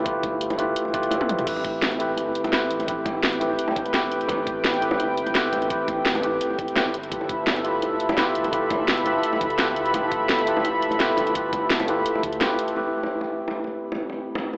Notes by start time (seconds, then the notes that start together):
Already playing: A3 E4 F4 G4 B4
0.04 G1 A3 E4 F4 G4 B4, kick, closed hi-hat
0.23 kick, closed hi-hat, high bongo
0.41 closed hi-hat
0.50 closed hi-hat, high bongo
0.58 A3 E4 F4 G4 B4, closed hi-hat
0.76 closed hi-hat
0.85 high bongo
0.93 G1 A3 E4 F4 G4 B4, kick, closed hi-hat
1.03 closed hi-hat
1.11 closed hi-hat, high bongo
1.20 A3 E4 F4 G4 B4, kick, high tom
1.29 G1, closed hi-hat, mid tom
1.39 closed hi-hat, mid tom
1.45 A1 A3 C4 E4 G4 B4 G5, kick, closed hi-hat, crash
1.56 high bongo
1.65 kick, closed hi-hat
1.82 snare, closed hi-hat, high bongo
1.92 closed hi-hat
1.98 A3 C4 E4 G4 B4, closed hi-hat
2.17 G1, closed hi-hat, high bongo
2.35 closed hi-hat
2.44 closed hi-hat, high bongo
2.52 A3 C4 E4 G4 B4, snare, closed hi-hat
2.70 A1, closed hi-hat
2.80 closed hi-hat, high bongo
2.87 A1 A3 C4 E4 G4 B4, kick, closed hi-hat
3.06 kick, closed hi-hat, high bongo
3.23 snare, closed hi-hat
3.33 closed hi-hat
3.39 A3 C4 E4 G4 B4, closed hi-hat, high bongo
3.59 closed hi-hat
3.68 high bongo
3.76 E1, kick, closed hi-hat
3.86 closed hi-hat
3.93 A3 C4 E4 G4 B4, snare, closed hi-hat
4.03 kick, high bongo
4.12 closed hi-hat
4.21 closed hi-hat
4.28 A1 A3 C4 E4 G4 B4, kick, closed hi-hat, high bongo
4.47 kick, closed hi-hat
4.64 snare, closed hi-hat, high bongo
4.74 closed hi-hat
4.80 A3 C4 E4 G4 B4, closed hi-hat
4.91 high bongo
5.00 G1, closed hi-hat
5.17 closed hi-hat
5.26 closed hi-hat, high bongo
5.34 A3 C4 E4 G4 B4, snare, closed hi-hat
5.53 A1, closed hi-hat, high bongo
5.62 closed hi-hat
5.69 A1 A3 C4 E4 G4 B4, kick, closed hi-hat
5.88 kick, closed hi-hat, high bongo
6.06 snare, closed hi-hat
6.15 closed hi-hat, high bongo
6.22 A3 C4 E4 G4 B4, closed hi-hat
6.41 closed hi-hat
6.50 high bongo
6.59 E1, kick, closed hi-hat
6.68 closed hi-hat
6.76 A3 C4 E4 G4 B4, snare, closed hi-hat, high bongo
6.86 kick
6.94 G1 A4 E5 B5, closed hi-hat
7.03 closed hi-hat
7.10 G1 A3 E4 F4 G4 B4, kick, closed hi-hat
7.21 high bongo
7.29 kick, closed hi-hat
7.47 snare, closed hi-hat, high bongo
7.56 closed hi-hat
7.63 A3 E4 F4 G4 B4, closed hi-hat
7.82 F1, closed hi-hat, high bongo
8.00 closed hi-hat
8.09 closed hi-hat, high bongo
8.17 A3 E4 F4 G4 B4, snare, closed hi-hat
8.35 G1, closed hi-hat
8.44 closed hi-hat, high bongo
8.51 G1 A3 E4 F4 G4 B4, kick, closed hi-hat
8.70 kick, closed hi-hat, high bongo
8.88 snare, closed hi-hat
8.97 closed hi-hat
9.04 A3 E4 F4 G4 B4, closed hi-hat, high bongo
9.23 closed hi-hat
9.33 high bongo
9.41 D2, kick, closed hi-hat
9.50 closed hi-hat
9.58 A3 E4 F4 G4 B4, snare, closed hi-hat
9.68 kick, high bongo
9.76 closed hi-hat
9.86 closed hi-hat
9.92 G1 A3 E4 F4 G4 B4, kick, closed hi-hat, high bongo
10.12 kick, closed hi-hat
10.29 snare, closed hi-hat, high bongo
10.39 closed hi-hat
10.45 A3 E4 F4 G4 B4, closed hi-hat
10.57 high bongo
10.65 F1, closed hi-hat
10.82 closed hi-hat
10.91 closed hi-hat, high bongo
10.99 A3 E4 F4 G4 B4, snare, closed hi-hat
11.17 G1, closed hi-hat, high bongo
11.27 closed hi-hat
11.34 G1 A3 E4 F4 G4 B4, kick, closed hi-hat
11.53 kick, closed hi-hat, high bongo
11.70 snare, closed hi-hat
11.80 closed hi-hat, high bongo
11.87 A3 E4 F4 G4 B4, closed hi-hat
12.06 closed hi-hat
12.15 high bongo
12.23 D2, kick, closed hi-hat
12.33 closed hi-hat
12.40 A3 E4 F4 G4 B4, snare, closed hi-hat, high bongo
12.59 closed hi-hat
12.68 closed hi-hat
12.75 A3 C4 E4 G4 A4 B4 G5 B5, high bongo
13.03 high bongo
13.21 high bongo
13.48 high bongo
13.64 high bongo
13.92 high bongo
14.10 high bongo
14.35 high bongo
14.53 high bongo